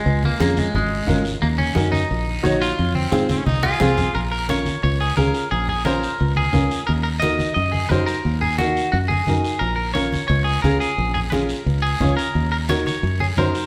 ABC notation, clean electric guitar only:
X:1
M:4/4
L:1/8
Q:1/4=176
K:Bbm
V:1 name="Clean electric guitar"
A, B, B, A, A,3 z | B, D2 E4 F- | F C2 z2 A3 | B B d2 d A B2 |
A A B3 A3 | B B e2 e A B B- | B A G2 G A3 | B B d2 d A B A- |
A A B3 A2 B- | B B d d2 A B2 |]